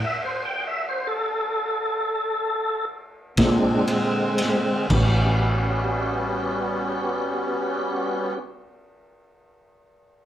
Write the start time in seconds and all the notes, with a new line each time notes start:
0.04 E5
0.25 C5
0.45 G5
0.67 E5
0.89 C5
1.07 A4
3.37 A#2 D3 G#3 C4 D4, kick, snare, ride
3.87 ride
4.38 snare, ride
4.88 A1 G3 B3 C#4, kick, crash
4.93 B3 C#4 F#4 G4